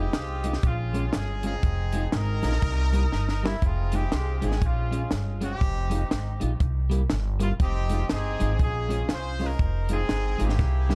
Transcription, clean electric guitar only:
0.44 G#3 D#4 F4
0.94 G#3 C#4 F4
1.44 G#3 C#4 F4
1.93 G#3 D#4 F4
2.42 G#3 D#4 F4
2.93 G3 A#3 E4
3.43 G3 A#3 E4
3.93 G#3 D#4 F4
4.42 G#3 D#4 F4
4.91 G#3 C#4 F4
5.41 G#3 C#4 F4
5.90 G#3 D#4 F4
6.40 G#3 D#4 F4
6.90 G3 A#3 E4
7.40 G3 A#3 E4
7.90 G#3 D#4 F4
8.40 G#3 D#4 F4
8.89 G#3 C#4 F4
9.39 G#3 C#4 F4
9.90 G#3 D#4 F4
10.38 G#3 D#4 F4
10.89 G3 A#3 E4

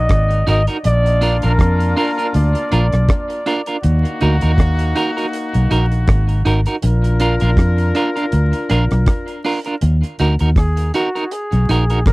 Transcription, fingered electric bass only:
0.10 G#1
0.48 G#1
0.85 A#1
1.44 A#1
1.59 F2
2.35 D2
2.73 A#1
2.93 B1
3.84 D#2
4.22 D2
4.43 D#2
5.55 B1
5.71 A#1
6.08 G#1
6.46 G#1
6.84 A#1
7.42 A#1
7.57 F2
8.33 D2
8.71 A#1
8.91 B1
9.83 D#2
10.20 D2
10.41 D#2
11.53 B1
11.69 A#1
12.06 G#1

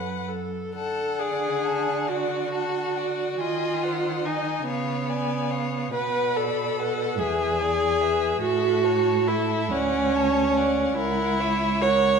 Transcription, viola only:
Already playing: B4
0.28 A4
0.75 A4
1.20 G#4
2.08 F#4
3.40 F4
4.25 D#4
4.67 B3
5.94 B4
6.36 A4
7.19 G#4
8.42 F#4
9.28 E4
9.71 C#4
10.97 E4
11.82 C#5

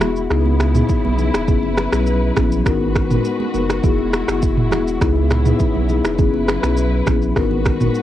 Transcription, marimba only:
0.01 B3 E4 F#4 G#4
0.31 B3 D#4 E4 G#4
0.75 B3 D#4 E4 G#4
1.18 B3 D#4 E4 G#4
1.48 B3 C#4 E4 G#4
1.92 B3 C#4 E4 G#4
2.36 B3 C#4 E4 G#4
2.65 B3 D#4 F#4 A#4
3.10 B3 D#4 F#4 A#4
3.54 B3 D#4 F#4 A#4
3.83 B3 E4 F#4 G#4
4.28 B3 E4 F#4 G#4
4.72 B3 E4 F#4 G#4
5.01 B3 D#4 E4 G#4
5.45 B3 D#4 E4 G#4
5.89 B3 D#4 E4 G#4
6.18 B3 C#4 E4 G#4
6.63 B3 C#4 E4 G#4
7.07 B3 C#4 E4 G#4
7.36 B3 D#4 F#4 A#4
7.81 B3 D#4 F#4 A#4

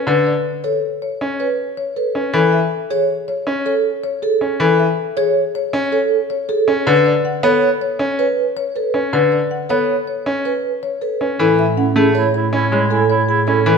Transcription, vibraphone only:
0.64 C#5
1.40 B4
1.97 B4
2.91 C#5
3.66 A4
4.23 A4
5.17 C#5
5.92 A4
6.49 A4
7.43 C#5
8.19 B4
8.76 B4
9.70 C#5
10.45 B4
11.02 B4
11.77 C#4
12.15 C#5
12.90 A4
13.47 A4

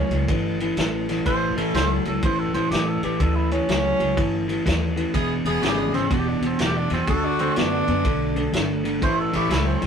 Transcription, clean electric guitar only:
0.12 A2 F#3
0.29 A2 E3
0.61 A2 E3
0.78 A2 E3
1.09 A2 E3
1.26 A2 E3
1.57 A2 E3
1.74 A2 F#3
2.07 A2 F#3
2.24 A2 E3
2.55 A2 E3
2.73 A2 E3
3.04 A2 E3
3.22 A2 E3
3.52 A2 E3
3.69 A2 F#3
3.99 A2 F#3
4.17 A2 E3
4.48 A2 E3
4.66 A2 E3
4.96 A2 E3
5.13 E2 B2
5.45 E2 B2
5.62 E2 C#3
5.92 E2 C#3
6.10 E2 B2
6.42 E2 B2
6.59 E2 B2
6.91 E2 B2
7.07 D3 A3
7.40 D3 A3
7.57 D3 B3
7.88 D3 B3
8.05 D3 A3
8.36 D3 A3
8.53 D3 A3
8.84 D3 A3
9.01 A2 E3
9.32 A2 E3
9.49 A2 F#3
9.82 A2 F#3

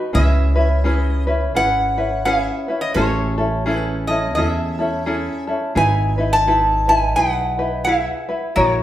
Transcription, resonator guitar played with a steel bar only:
0.15 E5
0.87 D#5
1.56 F#5
2.25 F5
2.42 E5
2.81 D#5
2.94 C#5
3.75 B4
4.07 D#5
4.35 D#5
4.46 E5
5.77 G#5
6.33 A5
6.89 G#5
7.16 F#5
7.85 E5
8.56 C#5

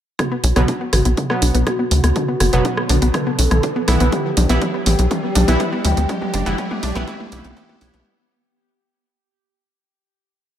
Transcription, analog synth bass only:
0.44 B1
0.56 B1
0.93 A1
1.05 B1
1.42 B1
1.55 B1
1.91 D2
2.04 D2
2.40 F#1
2.53 F#1
2.89 B1
3.02 B1
3.39 B1
3.51 B1
3.88 B1
4.00 B1
4.37 B1
4.50 B1
4.86 A1
4.99 B1
5.36 B1
5.48 B1
5.85 D2
5.97 D2
6.34 F#1
6.46 F#1
6.83 B1
6.96 B1
7.32 B1
7.45 B1
7.81 B1
7.94 B1

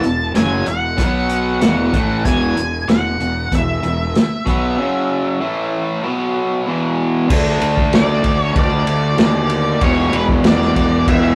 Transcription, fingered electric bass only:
0.04 E1
0.36 F#1
0.67 E1
0.98 B1
1.61 E1
1.93 A1
2.25 E1
2.57 E1
2.88 E1
3.21 E1
3.52 E1
3.84 E1
4.46 B1
7.30 D2
7.61 D2
7.93 D2
8.24 D2
8.56 D2
8.88 D2
9.19 D#2
9.81 E1
10.13 E1
10.44 E1
10.76 E1
11.07 E1

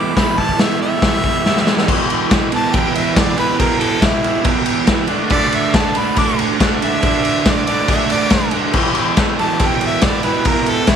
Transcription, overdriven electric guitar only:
Already playing: E3 B3 E4
0.00 G3
0.14 E3 G3 B3
0.19 E4
0.39 G3 B3 E4
0.59 E3 G3 B3 E4
0.80 E3 G3 B3 E4
1.02 E3 G3 B3 E4
1.23 G3 B3 E4
1.28 E3
1.45 E3 G3 B3 E4
1.66 B3 E4
1.70 G3
1.87 E2 B2 E3
2.30 E2 B2 E3
2.52 E2 B2 E3
2.74 E2 B2 E3
3.16 E2 B2 E3
3.36 E2 B2 E3
3.59 E2 B2 E3
4.01 E2 B2 E3
4.23 E2 B2 E3
4.44 E2 B2 E3
4.87 E2 B2 E3
5.08 D3 A3 D4
5.31 D3 A3 D4
5.74 D3 A3 D4
5.97 D3 A3 D4
6.17 D3 A3 D4
6.59 D3 A3 D4
6.83 D3 A3 D4
7.03 D3 A3 D4
7.46 D3 A3 D4
7.67 D3 A3 D4
7.89 D3 A3 D4
8.31 D3 A3 D4
8.53 D3 A3 D4
8.76 E2 B2 E3
9.18 E2 B2 E3
9.39 E2 B2 E3
9.60 E2 B2 E3
10.03 E2 B2 E3
10.24 E2 B2 E3
10.45 E2 B2 E3
10.88 E2 B2 E3

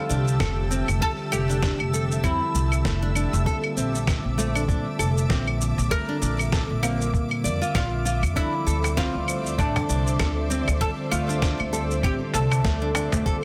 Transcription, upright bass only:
0.10 C2
0.40 F1
0.88 F1
1.32 F1
1.80 F1
2.24 F2
2.54 C2
2.85 F1
3.33 F1
3.77 A#1
4.25 A#1
4.68 A#2
4.99 F1
5.30 A#1
5.78 A#1
6.22 A#1
6.70 A#1
7.14 A#2
7.44 F2
7.75 A#1
8.23 F2
8.67 D2
9.15 D2
9.58 A1
9.89 C2
10.19 D2
10.68 D2
11.12 D2
11.60 D2
12.03 A1
12.34 C2
12.65 D2
13.13 D2

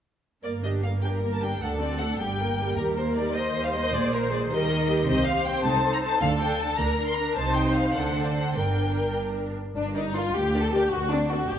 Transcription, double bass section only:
0.44 G1
1.61 D2
2.20 G1
2.78 D#2
3.93 A#1
4.51 D#2
5.08 C2
5.65 C2
6.22 D2
6.78 D2
7.36 C2
7.96 D2
8.56 G1
9.75 G1
10.34 D2
10.92 D2
11.50 G1

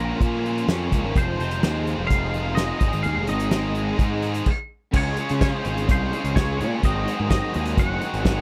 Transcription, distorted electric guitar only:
Already playing: F3 A#3 C#4 F4
0.20 A#2 F3 A#3 C#4 F4
0.45 A#3 C#4 F4
0.70 F3 A#3 C#4 F4
0.92 A#3 C#4 F4
1.15 F3 G#3 C4 F4
1.63 F3 G#3 C4 F4
2.12 F3 G#3 C4 F4
2.36 G#3 C4 F4
2.59 F3 G#3 C4 F4
2.83 G#2 D#3 G#3 C4 D#4
3.07 G#2 D#3 G#3 C4 D#4
3.53 D#3 G#3 C4 D#4
3.99 G#2 D#3 G#3 C4 D#4
4.24 G#3 C4 D#4
4.94 C#3 G#3 C#4 F4
5.18 C#3 G#3 C#4 F4
5.41 C#3 G#3 C#4 F4
5.64 C#3 G#3 C#4 F4
5.89 C#3 G#3 C#4 F4
6.13 C#3 G#3 C#4 F4
6.37 C#3 G#3 C#4 F4
6.60 C#3 G#3 C#4 F4
6.84 G#2 D#3 G#3 C4 D#4
7.07 G#2 D#3 G#3 C4 D#4
7.31 G#2 D#3 G#3 C4 D#4
7.55 G#2 D#3 G#3 C4 D#4
7.77 G#2 D#3 G#3 C4 D#4
8.01 G#2 D#3 G#3 C4 D#4
8.24 G#2 D#3 G#3 C4 D#4

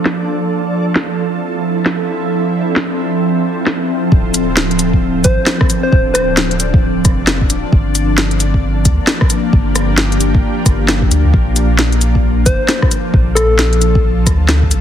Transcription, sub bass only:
4.12 D1
5.25 A1
5.92 D1
7.05 F1
7.50 D1
7.72 G1
8.85 D2
9.53 G1
10.66 G1
11.10 D2
11.24 D2
11.34 A#1
12.47 F1
13.14 A#1
14.27 D2
14.72 A#1

